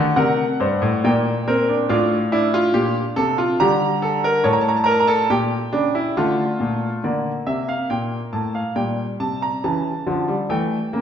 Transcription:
0.00 0.17 D3 medium
0.00 0.99 A3 medium
0.00 0.14 A4 medium
0.00 0.14 D5 medium
0.16 0.43 C3 medium
0.16 0.43 A#4 medium
0.16 1.00 F#5 medium
0.60 0.81 G2 medium
0.60 0.87 C5 medium
0.82 1.03 A2 medium
1.04 1.87 A#2 medium
1.04 1.31 A#3 medium
1.04 1.31 D5 medium
1.04 1.88 G5 medium
1.47 1.68 C4 medium
1.47 1.74 A#4 medium
1.69 1.88 D4 medium
1.89 2.72 A2 medium
1.89 2.16 D4 medium
1.89 2.16 F4 medium
1.89 3.56 F5 medium
2.32 3.56 D4 medium
2.32 2.53 E4 medium
2.54 2.74 F4 medium
2.74 3.00 A#2 medium
2.74 3.00 G4 medium
3.16 3.43 C3 medium
3.16 3.37 A4 medium
3.38 3.59 F4 medium
3.60 4.42 D3 medium
3.60 6.13 G3 medium
3.60 3.86 G4 medium
3.60 4.42 A#5 medium
4.02 4.23 A4 medium
4.24 4.44 A#4 medium
4.44 5.27 A2 medium
4.44 4.70 C#5 medium
4.44 4.52 A5 medium
4.53 4.60 A#5 medium
4.61 4.68 A5 medium
4.68 4.76 A#5 medium
4.77 4.84 A5 medium
4.84 5.07 A#4 medium
4.84 4.92 A#5 medium
4.91 4.99 A5 medium
5.00 5.08 A#5 medium
5.07 5.29 A4 medium
5.07 5.29 A5 medium
5.30 5.57 A#2 medium
5.30 5.57 G4 medium
5.30 6.14 G5 medium
5.72 6.00 C#3 medium
5.72 5.94 D4 medium
5.95 6.16 E4 medium
6.17 6.44 D3 medium
6.17 7.01 A3 medium
6.17 7.01 F4 medium
6.17 7.01 A5 medium
6.60 6.87 A#2 medium
7.04 7.31 D3 medium
7.04 8.73 A#3 medium
7.04 7.31 D5 medium
7.47 7.74 C3 medium
7.47 7.68 E5 medium
7.69 7.90 F5 medium
7.90 8.17 A#2 medium
7.90 8.17 G5 medium
8.33 8.60 A2 medium
8.33 8.54 A5 medium
8.55 8.76 F5 medium
8.76 9.03 A#2 medium
8.76 9.60 G3 medium
8.76 9.03 G5 medium
9.20 9.47 C3 medium
9.20 9.41 A5 medium
9.42 9.63 A#5 medium
9.64 9.90 C#3 medium
9.64 9.90 E3 medium
9.64 10.47 A5 medium
10.07 10.33 D3 medium
10.07 10.27 F3 medium
10.28 10.49 G3 medium
10.49 10.76 E3 medium
10.49 10.76 A3 medium
10.49 11.01 G5 medium
10.93 11.01 C#3 medium
10.93 11.01 A#3 medium

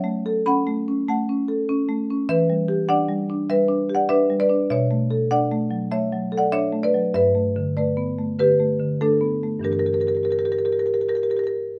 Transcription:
0.00 1.03 F#3 medium
0.00 0.37 A3 medium
0.00 0.42 C#5 medium
0.00 0.43 E5 loud
0.26 0.59 A4 medium
0.46 0.79 C#4 medium
0.46 1.04 F#5 medium
0.46 1.05 B5 loud
0.67 0.99 A3 medium
0.88 1.20 C#4 medium
1.08 1.40 A3 medium
1.08 1.65 F#5 medium
1.08 1.66 A5 medium
1.29 1.60 C#4 medium
1.48 1.80 A4 medium
1.69 2.01 C#4 medium
1.89 2.20 A3 medium
2.10 2.29 C#4 medium
2.29 3.46 E3 medium
2.29 2.86 B4 medium
2.29 2.87 E5 loud
2.50 2.81 G3 medium
2.68 3.01 G4 medium
2.89 3.21 D4 medium
2.89 3.46 D5 medium
2.89 3.47 F#5 loud
3.09 3.41 G3 medium
3.30 3.62 D4 medium
3.49 3.82 G3 medium
3.49 3.93 B4 medium
3.49 3.93 E5 loud
3.68 4.02 D4 medium
3.89 4.23 G4 medium
3.95 4.10 D5 medium
3.95 4.10 F#5 loud
4.09 4.43 D4 medium
4.09 4.39 B4 medium
4.09 4.39 E5 loud
4.30 4.63 G3 medium
4.40 4.69 B4 medium
4.40 4.70 D5 loud
4.50 4.71 D4 medium
4.70 5.89 B2 medium
4.70 5.28 C#5 loud
4.70 5.29 E5 loud
4.91 5.24 A3 medium
5.11 5.44 A4 medium
5.31 5.64 D4 medium
5.31 5.89 D5 medium
5.31 5.90 F#5 loud
5.51 5.84 A3 medium
5.71 6.04 F#3 medium
5.91 6.25 A3 medium
5.91 6.35 C#5 medium
5.91 6.36 E5 loud
6.12 6.45 F#3 medium
6.32 6.66 A4 medium
6.38 6.53 D5 medium
6.38 6.54 F#5 loud
6.52 6.86 D4 medium
6.52 6.82 C#5 medium
6.52 6.83 E5 loud
6.72 7.06 A3 medium
6.83 7.13 B4 medium
6.83 7.13 D5 loud
6.94 7.15 F#3 medium
7.14 8.34 G2 medium
7.14 7.73 B4 medium
7.14 7.74 E5 loud
7.35 7.68 A3 medium
7.56 7.89 D3 medium
7.77 8.10 A3 medium
7.77 8.35 B4 medium
7.77 8.36 D5 medium
7.97 8.30 B3 medium
8.19 8.51 A3 medium
8.39 8.72 D3 medium
8.39 8.98 G4 medium
8.39 8.99 B4 loud
8.60 8.93 A3 medium
8.80 9.13 D3 medium
9.01 9.35 A3 medium
9.01 9.61 D4 medium
9.01 9.62 A4 medium
9.21 9.55 B3 medium
9.43 9.64 A3 medium
9.60 11.79 G2 medium
9.60 11.79 E3 soft
9.60 11.79 D4 medium
9.64 9.72 G4 medium
9.64 9.73 A#4 medium
9.72 9.79 G4 soft
9.72 9.79 A#4 medium
9.79 9.86 G4 medium
9.79 9.86 A#4 medium
9.86 9.93 G4 soft
9.86 9.94 A#4 medium
9.93 10.00 G4 medium
9.93 10.01 A#4 medium
10.00 10.07 G4 soft
10.00 10.08 A#4 medium
10.07 10.15 G4 medium
10.07 10.17 A#4 medium
10.15 10.23 G4 soft
10.15 10.25 A#4 medium
10.23 10.31 G4 medium
10.23 10.32 A#4 medium
10.31 10.39 G4 soft
10.31 10.39 A#4 medium
10.39 10.45 G4 medium
10.39 10.46 A#4 medium
10.45 10.52 G4 medium
10.45 10.52 A#4 medium
10.52 10.58 G4 medium
10.52 10.59 A#4 medium
10.58 10.65 G4 medium
10.58 10.66 A#4 medium
10.65 10.73 G4 medium
10.65 10.72 A#4 medium
10.72 10.80 G4 soft
10.72 10.79 A#4 medium
10.79 10.87 G4 medium
10.79 10.86 A#4 medium
10.86 10.94 G4 soft
10.86 10.94 A#4 medium
10.94 11.01 G4 medium
10.94 11.01 A#4 medium
11.01 11.09 G4 soft
11.01 11.09 A#4 medium
11.09 11.17 G4 medium
11.09 11.15 A#4 medium
11.15 11.23 G4 medium
11.15 11.23 A#4 medium
11.23 11.30 G4 medium
11.23 11.31 A#4 medium
11.30 11.37 G4 medium
11.30 11.39 A#4 medium
11.37 11.44 G4 medium
11.37 11.47 A#4 medium
11.44 11.52 G4 soft
11.44 11.52 A#4 medium

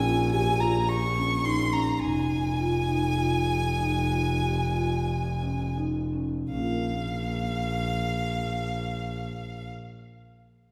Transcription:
0.00 2.03 A#1 medium
0.00 0.23 F4 medium
0.00 0.31 G#5 medium
0.31 0.51 G4 medium
0.31 0.61 G#5 medium
0.59 0.99 F4 medium
0.59 0.90 A#5 medium
0.88 1.46 C#6 medium
1.16 1.36 C#4 medium
1.44 1.64 D#4 medium
1.44 1.74 C6 medium
1.72 1.92 C#4 medium
1.72 1.93 A#5 medium
1.93 2.02 A#5 soft
2.00 6.47 F1 medium
2.00 2.42 D#4 medium
2.00 5.77 G#5 medium
2.59 2.79 F4 medium
2.88 3.09 D#4 medium
3.18 3.60 F4 medium
3.79 4.00 D#4 medium
4.10 4.32 F4 soft
4.42 4.65 G4 soft
4.75 5.22 F4 medium
5.42 5.66 C#4 soft
5.77 6.03 D#4 medium
6.13 6.39 C#4 soft
6.50 9.71 A#1 medium
6.50 9.71 A#3 soft
6.50 9.74 C#4 soft
6.50 9.71 F5 medium
6.59 9.79 F4 soft
6.59 9.82 A#4 soft

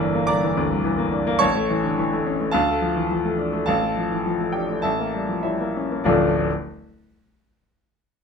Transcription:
0.00 0.25 G1 loud
0.00 1.44 D3 medium
0.00 0.43 E3 medium
0.00 0.15 A#3 medium
0.00 0.23 D4 medium
0.00 0.24 E5 loud
0.00 0.24 A#5 medium
0.00 0.27 E6 loud
0.15 0.37 A#3 medium
0.27 1.38 G1 medium
0.27 0.81 D5 medium
0.27 0.81 A#5 medium
0.27 0.84 D6 loud
0.43 0.65 E3 medium
0.57 0.80 D2 medium
0.71 0.85 C2 medium
0.84 1.07 E3 medium
0.98 1.21 A#3 medium
1.12 1.35 D4 medium
1.27 1.41 A#3 medium
1.39 2.50 A1 medium
1.39 2.49 C#5 medium
1.39 2.49 A5 medium
1.39 2.52 C#6 loud
1.55 1.78 A3 medium
1.70 1.92 E3 medium
1.84 1.98 D3 medium
1.98 2.20 E3 medium
2.13 2.35 A3 medium
2.27 2.49 C#4 medium
2.40 2.54 A3 medium
2.51 3.64 D2 medium
2.51 3.63 A4 medium
2.51 3.63 F5 medium
2.51 3.64 A5 loud
2.69 2.91 A3 medium
2.82 3.04 F3 medium
2.96 3.10 E3 medium
3.10 3.33 F3 medium
3.25 3.48 A3 medium
3.38 3.62 D4 medium
3.53 3.67 A3 medium
3.66 4.80 A1 medium
3.66 4.50 A4 medium
3.66 4.49 F5 medium
3.66 4.53 A5 medium
3.83 4.05 A3 medium
3.97 4.19 F3 soft
4.12 4.26 E3 medium
4.26 4.48 F3 medium
4.41 4.63 A3 soft
4.52 4.78 D4 soft
4.52 4.81 G4 medium
4.52 4.83 G5 medium
4.70 4.84 A3 soft
4.82 6.03 A1 medium
4.82 5.40 A4 medium
4.82 5.40 E5 medium
4.82 5.44 A5 medium
4.99 5.23 A#3 medium
5.14 5.38 G3 soft
5.29 5.44 F3 soft
5.43 5.70 G3 soft
5.43 6.02 E4 soft
5.43 6.02 C#5 soft
5.43 6.05 E5 medium
5.60 5.85 A#3 medium
5.77 6.01 C#4 medium
5.92 6.06 A#3 medium
6.04 6.38 D1 loud
6.04 6.39 A1 medium
6.04 6.39 F3 medium
6.04 6.39 A3 medium
6.04 6.39 D4 medium
6.04 6.39 F4 medium
6.04 6.38 D5 medium

